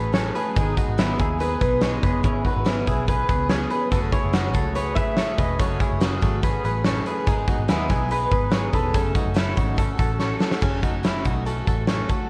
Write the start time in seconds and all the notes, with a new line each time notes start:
Already playing: A1 F#3 A3 C#4 G#4 A4 B4
0.12 F#2 C#3 F#3 A3 C#4 G#4 A4 C#5, snare, closed hi-hat
0.35 F#3 A3 C#4 G#4 B4, closed hi-hat
0.56 G#1 G#2 D#3 G#3 B3 D#4 G#4, kick, closed hi-hat
0.77 G#3 B3 D#4 F#4 G#4, kick, closed hi-hat
0.88 G#1
0.97 G#2 D#3 G#3 B3 D#4 E4 G#4, snare, closed hi-hat
1.18 D#2 G#3 B3 D#4 E4 G#4, kick, closed hi-hat
1.38 G#3 B3 D#4 G#4 B4, closed hi-hat
1.60 B1 G#3 B3 D#4 G#4 B4, kick, closed hi-hat
1.81 G#2 D#3 G#3 B3 D#4 G#4 C#5 D#5, snare, closed hi-hat
2.03 F#1 G#3 B3 D#4 G#4 B4, kick, closed hi-hat
2.23 G#1 G#2 C#3 E3 B3 C#4 E4 G#4 C#5, kick, closed hi-hat
2.44 E3 B3 C#4 D#4 F#4 G#4 B4, kick, closed hi-hat
2.56 G#1
2.64 G#2 C#3 E3 B3 C#4 E4 G#4, snare, closed hi-hat
2.86 B1 E3 B3 C#4 E4 G#4, kick, closed hi-hat
3.07 E3 B3 C#4 G#4 B4, kick, closed hi-hat
3.28 C#2 E3 B3 C#4 G#4 B4, kick, closed hi-hat
3.49 G#2 C#3 E3 B3 C#4 G#4 C#5, snare, closed hi-hat
3.70 E3 B3 C#4 G#4 B4, closed hi-hat
3.92 F#1 F#2 C#3 F#3 A3 C#4 F#4 G#4 A4, kick, closed hi-hat
4.13 F#3 A3 C#4 E4 G#4 C#5, kick, closed hi-hat
4.24 F#1
4.33 F#2 C#3 F#3 A3 C#4 F#4 G#4, snare, closed hi-hat
4.53 C#2 F#3 A3 C#4 F#4 G#4 A4, kick, closed hi-hat
4.75 F#3 A3 C#4 G#4 B4 C#5, closed hi-hat
4.95 A1 F#3 A3 C#4 G#4 B4 E5, kick, closed hi-hat
5.17 F#2 C#3 F#3 A3 C#4 G#4 A4 C#5, snare, closed hi-hat
5.38 E1 F#3 A3 C#4 G#4 B4 D#5, kick, closed hi-hat
5.59 F#1 F#2 C#3 F#3 A3 C#4 F#4 G#4 A4 C#5, kick, closed hi-hat
5.80 F#3 A3 C#4 E4 G#4, kick, closed hi-hat
5.91 F#1
6.00 F#2 C#3 F#3 A3 C#4 F#4 G#4, snare, closed hi-hat
6.21 G#1 F#3 A3 C#4 F#4 G#4 A4, kick, snare, closed hi-hat
6.42 F#3 A3 C#4 G#4 B4, kick, closed hi-hat
6.64 A1 F#3 A3 C#4 G#4 B4, closed hi-hat
6.84 F#2 C#3 F#3 A3 C#4 G#4 A4 C#5, snare, closed hi-hat
7.05 F#3 A3 C#4 G#4 B4, closed hi-hat
7.27 G#1 G#2 D#3 G#3 B3 D#4 G#4, kick, closed hi-hat
7.48 B3 D#4 F#4 G#4, kick, closed hi-hat
7.52 G#3
7.58 G#1
7.68 D#2 G#2 D#3 G#3 B3 D#4 E4 G#4, snare, closed hi-hat
7.88 B1 G#3 B3 D#4 E4 G#4, kick, snare, closed hi-hat
8.09 G#3 B3 D#4 G#4 B4, closed hi-hat
8.30 G#1 G#3 B3 D#4 G#4 B4, kick, closed hi-hat
8.50 G#2 D#3 G#3 B3 D#4 G#4 C#5, snare, closed hi-hat
8.55 G#4
8.72 E1 G#3 B3 D#4 G#4 A4 B4, kick, closed hi-hat
8.94 F#1 F#2 C#3 F#3 A3 C#4 G#4 A4, kick, closed hi-hat
9.14 F#3 A3 C#4 D#4 F#4 A4, kick, closed hi-hat
9.26 F#1
9.34 F#2 C#3 F#3 A3 C#4 E4 A4, snare, closed hi-hat
9.55 G#1 F#3 A3 C#4 D#4 F#4 A4, kick, closed hi-hat
9.76 F#3 A3 C#4 F#4 A4, kick, closed hi-hat
9.98 A1 F#3 A3 C#4 F#4 A4, kick, closed hi-hat
10.20 F#2 C#3 F#3 A3 C#4 A4 C#5, snare
10.39 F#3 A3 C#4 F#4 A4, snare
10.51 snare
10.61 F#1 F#2 C#3 F#3 A3 C#4 G#4 A4, kick, crash
10.82 F#3 A3 C#4 D#4 F#4 A4, kick, closed hi-hat
11.03 F#2 C#3 F#3 A3 C#4 E4 A4, snare, closed hi-hat
11.25 B1 F#3 A3 C#4 D#4 F#4 A4, kick, closed hi-hat
11.45 F#3 A3 C#4 F#4 A4, closed hi-hat
11.66 A1 F#3 A3 C#4 F#4 A4, kick, closed hi-hat
11.87 F#2 C#3 F#3 A3 C#4 A4 C#5, snare, closed hi-hat
12.09 F#3 A3 C#4 F#4 A4, kick, closed hi-hat